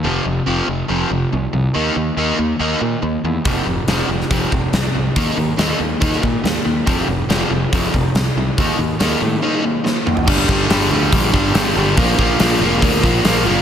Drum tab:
CC |----------------|----------------|----------------|----------------|
HH |----------------|----------------|o---o---o---o---|o---o---o---o---|
SD |----------------|----------------|----o--o----o---|----o----o--o---|
T2 |----------------|----------------|----------------|----------------|
FT |----------------|----------------|----------------|----------------|
BD |----------------|----------------|o-------o-o-----|o-------o-o-----|

CC |----------------|----------------|x---------------|----------------|
HH |o---o---o---o---|o---o-----------|----o---o---o---|o---o---o---o---|
SD |----o-------o---|----o-------o---|----o-----o-o---|----o-----o-o---|
T2 |----------------|--------------o-|----------------|----------------|
FT |----------------|---------------o|----------------|----------------|
BD |o-------o-o-----|o---------------|o-o-----o-o-----|o-o-----o-o-----|